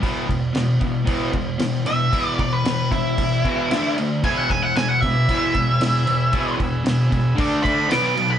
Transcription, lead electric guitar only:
1.87 2.26 E5 loud
2.26 2.38 D5 loud
2.40 2.53 D5 medium
2.53 2.91 B4 medium
2.91 3.94 E4 loud
4.24 4.37 G#5 loud
4.37 4.50 F#5 medium
4.50 4.63 G#5 loud
4.63 4.76 F#5 loud
4.76 4.88 G#5 loud
4.88 5.01 F#5 medium
5.01 6.55 E5 loud
7.63 7.89 B5 loud
7.92 8.03 D6 loud
8.04 8.30 D6 loud
8.31 8.39 B5 loud

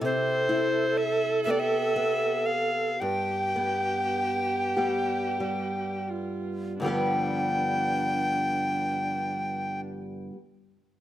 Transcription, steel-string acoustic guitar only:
0.00 2.99 C3 medium
0.00 1.46 C4 medium
0.00 0.49 E4 medium
0.00 0.12 A4 medium
0.49 1.46 E4 medium
1.47 1.96 B3 soft
1.47 4.76 G4 medium
1.96 3.56 B3 medium
3.01 6.79 G2 medium
3.56 4.77 B3 soft
4.77 5.40 G3 soft
4.77 6.86 B3 soft
4.77 6.87 G4 soft
5.40 6.84 G3 soft
6.80 10.30 G2 medium
6.80 10.32 D3 medium
6.80 10.33 F3 medium
6.84 10.34 G3 medium
6.84 10.36 B3 medium
6.84 10.37 G4 medium

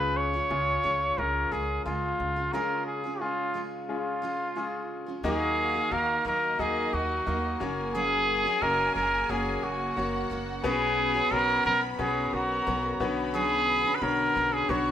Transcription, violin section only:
5.24 6.23 F#4 medium
5.24 6.23 F5 medium
6.26 7.58 D#4 medium
6.26 7.58 D#5 medium
7.61 9.93 G#4 medium
7.61 9.93 G#5 loud
9.97 10.63 F#4 medium
9.97 10.63 F#5 medium
10.65 12.30 B3 loud
10.65 12.30 B5 loud
12.33 12.99 A#4 medium
12.33 12.99 A#5 medium
13.00 14.66 B3 medium
13.00 14.66 B5 loud
14.70 14.91 C#5 medium
14.70 14.91 C#6 medium

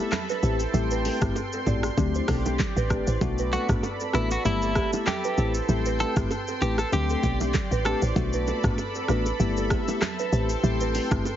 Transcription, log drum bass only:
0.43 0.66 A1 loud
0.74 1.10 A1 loud
1.22 1.32 G1 loud
1.67 1.90 A1 medium
1.98 2.21 D2 loud
2.29 2.65 B1 loud
2.76 3.00 A1 loud
3.07 3.18 A1 loud
3.21 3.57 B1 loud
3.69 3.80 A1 loud
4.14 4.37 A1 medium
4.45 4.81 G1 loud
5.38 5.61 A1 loud
5.69 6.05 A1 loud
6.17 6.27 G1 loud
6.62 6.85 A1 medium
6.92 7.16 D2 loud
7.24 7.59 B1 loud
7.71 7.95 A1 medium
8.02 8.13 A1 loud
8.16 8.52 B1 loud
8.64 8.75 A1 loud
9.09 9.32 A1 medium
9.40 9.76 G1 loud
10.33 10.56 A1 loud
10.64 11.00 A1 loud
11.11 11.22 G1 medium

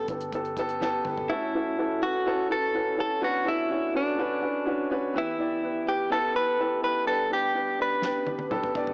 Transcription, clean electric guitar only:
1.30 2.04 E4 medium
2.03 2.47 F#4 loud
2.52 2.99 A4 loud
3.00 3.24 A4 loud
3.24 3.48 F#4 loud
3.48 3.96 E4 medium
3.97 4.87 D4 medium
5.18 5.90 E4 medium
5.89 6.12 G4 medium
6.12 6.36 A4 loud
6.36 6.80 B4 loud
6.84 7.07 B4 loud
7.07 7.32 A4 loud
7.33 7.81 G4 loud
7.82 8.72 B4 medium

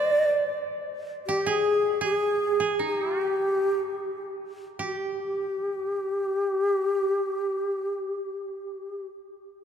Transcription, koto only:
0.00 1.34 C5 soft
0.00 1.42 D5 soft
1.29 1.52 G4 soft
1.46 2.01 G#4 medium
2.01 2.60 G#4 soft
2.60 2.85 G#4 soft
2.79 3.25 D#4 soft
3.25 4.79 G4 soft
4.79 9.05 G4 soft

